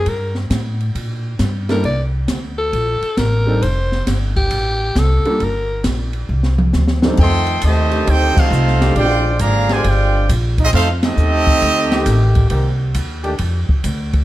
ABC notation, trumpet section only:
X:1
M:4/4
L:1/8
Q:"Swing" 1/4=135
K:Cdor
V:1 name="Trumpet section"
z8 | z8 | z8 | z8 |
[K:F] [A_egc']2 [Gcea]2 [_EAcg] [EAcf]3 | [Fcdg]2 [_Adfb] [Fcd_a] [Fcdg]2 z [CFA_e] | [_EAcf] [CGA_e]6 z | z8 |]